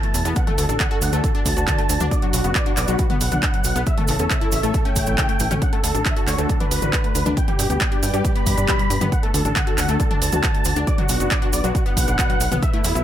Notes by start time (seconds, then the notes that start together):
Already playing: E3 E4 A4 B4 A5
0.03 A3, closed hi-hat
0.14 E2 B2, open hi-hat, cabasa
0.25 E2 B3, closed hi-hat, cabasa
0.36 D3 D4 F#4 F#5, kick, closed hi-hat, cabasa
0.47 A3 A4, closed hi-hat, mid tom
0.58 D2 D3 A4, open hi-hat, cabasa
0.69 A1 D4 A4, closed hi-hat, cabasa
0.80 D3 F#5, kick, clap, closed hi-hat, cabasa
0.91 F#4 A4, closed hi-hat
1.02 D2 D3 F#5, open hi-hat, cabasa
1.13 D2 A3 A4, closed hi-hat, cabasa
1.24 D3 A4, kick, closed hi-hat, cabasa
1.35 D4 A5, closed hi-hat
1.46 D2 D3, kick, open hi-hat, cabasa
1.57 D2 F#4, closed hi-hat, cabasa
1.68 D3, kick, clap, closed hi-hat, cabasa
1.78 A3, closed hi-hat
1.89 D2 D3, open hi-hat, cabasa
2.00 D2 D4, closed hi-hat, mid tom, cabasa
2.11 B2 B4 D5, kick, closed hi-hat, cabasa
2.22 F#3 F#4, closed hi-hat
2.33 B1 B2 F#4, open hi-hat, cabasa
2.44 F#1 B3 F#4, closed hi-hat, cabasa
2.55 B2 D5, kick, clap, closed hi-hat, cabasa
2.66 D4 F#4, closed hi-hat
2.77 B1 B2 D5, clap, open hi-hat, cabasa
2.88 B1 F#3 F#4, closed hi-hat, cabasa
2.99 B2 F#4, kick, closed hi-hat, cabasa
3.10 B3 F#5, closed hi-hat, mid tom
3.21 B1 B2, open hi-hat, cabasa
3.32 B1 D4, closed hi-hat, mid tom, cabasa
3.42 B2, kick, clap, closed hi-hat, cabasa
3.54 F#3, closed hi-hat
3.64 B1 B2, open hi-hat, cabasa
3.76 B1 B3, closed hi-hat, cabasa
3.87 C#3 A3 A4 C#5 E5, kick, closed hi-hat, cabasa
3.98 A3 A4, closed hi-hat, mid tom
4.08 A1 C#3 A4, open hi-hat, cabasa
4.19 E2 C#4 A4, closed hi-hat, cabasa
4.30 C#3 E5, kick, clap, closed hi-hat, cabasa
4.41 E4 A4, closed hi-hat
4.52 A1 C#3 E5, open hi-hat, cabasa
4.63 A1 A3 A4, closed hi-hat, cabasa
4.74 C#3 A4, kick, closed hi-hat, cabasa
4.85 C#4 G5, closed hi-hat
4.96 A1 C#3, kick, open hi-hat, cabasa
5.06 A1 E4, closed hi-hat, cabasa
5.18 C#3, kick, clap, closed hi-hat, cabasa
5.29 A3, closed hi-hat
5.40 A1 C#3, open hi-hat, cabasa
5.51 A1 C#4, closed hi-hat, mid tom, cabasa
5.62 D3 D4 F#4 F#5, kick, closed hi-hat, cabasa
5.73 A3 A4, closed hi-hat
5.84 D2 D3 A4, open hi-hat, cabasa
5.95 A1 D4 A4, closed hi-hat, cabasa
6.06 D3 E5, kick, clap, closed hi-hat, cabasa
6.17 F#4 A4, closed hi-hat
6.27 D2 D3 C#5, clap, open hi-hat, cabasa
6.38 D2 A3 A4, closed hi-hat, cabasa
6.49 D3 A4, kick, closed hi-hat, cabasa
6.60 D4 B4, closed hi-hat, mid tom
6.71 D2 D3, open hi-hat, cabasa
6.82 A1 F#4, closed hi-hat, mid tom, cabasa
6.93 D3, kick, clap, closed hi-hat, cabasa
7.04 A3, closed hi-hat
7.15 D2 D3, open hi-hat, cabasa
7.26 D2 D4, closed hi-hat, mid tom, cabasa
7.37 B2 G3 G4 B4 D5 G5, kick, closed hi-hat, cabasa
7.48 G3 G4, closed hi-hat, mid tom
7.59 G2 B2 G4, open hi-hat, cabasa
7.70 D2 B3 G4, closed hi-hat, cabasa
7.80 B2 G5, kick, clap, closed hi-hat, cabasa
7.92 D4 G4, closed hi-hat
8.03 G2 B2 G5, open hi-hat, cabasa
8.14 G2 G3 G4, closed hi-hat, cabasa
8.24 B2 G4, kick, closed hi-hat, cabasa
8.35 B3 B5, closed hi-hat
8.46 G2 B2, kick, open hi-hat, cabasa
8.57 G2 D4, closed hi-hat, cabasa
8.68 B2, kick, clap, closed hi-hat, cabasa
8.79 G3, closed hi-hat
8.90 G2 B2, open hi-hat, cabasa
9.01 G2 B3, closed hi-hat, mid tom, cabasa
9.12 D3 D4 F#4 A4 F#5, kick, closed hi-hat, cabasa
9.23 A3 A4, closed hi-hat
9.34 D2 D3 A4, open hi-hat, cabasa
9.45 A1 D4 A4, closed hi-hat, cabasa
9.56 D3 F#5, kick, clap, closed hi-hat, cabasa
9.67 F#4 A4, closed hi-hat
9.78 D2 D3 F#5, clap, open hi-hat, cabasa
9.88 D2 A3 A4, closed hi-hat, cabasa
10.00 D3 A4, kick, closed hi-hat, cabasa
10.11 D4 A5, closed hi-hat, mid tom
10.22 D2 D3, open hi-hat, cabasa
10.32 D2 F#4, closed hi-hat, mid tom, cabasa
10.43 D3, kick, clap, closed hi-hat, cabasa
10.54 A3, closed hi-hat
10.65 D2 D3, open hi-hat, cabasa
10.76 D2 D4, closed hi-hat, cabasa
10.87 B2 B4 D5, kick, closed hi-hat, cabasa
10.98 F#3 F#4, closed hi-hat, mid tom
11.09 B1 B2 F#4, open hi-hat, cabasa
11.20 F#1 B3 F#4, closed hi-hat, cabasa
11.31 D5, kick, clap, closed hi-hat, cabasa
11.42 D4 F#4, closed hi-hat
11.53 B1 B2 D5, open hi-hat, cabasa
11.64 B1 F#3 F#4, closed hi-hat, cabasa
11.75 B2 F#4, kick, closed hi-hat, cabasa
11.86 B3 F#5, closed hi-hat
11.97 B1 B2, kick, open hi-hat, cabasa
12.08 B1 D4, closed hi-hat, cabasa
12.19 B2, kick, clap, closed hi-hat, cabasa
12.30 F#3, closed hi-hat
12.40 B1 B2, open hi-hat, cabasa
12.52 B1 B3, closed hi-hat, mid tom, cabasa
12.62 B2 E3 E4 A4 E5, kick, closed hi-hat, cabasa
12.73 A3 E4, closed hi-hat
12.84 E2 B2 E4, open hi-hat, cabasa
12.95 B1 B3 E4, closed hi-hat, cabasa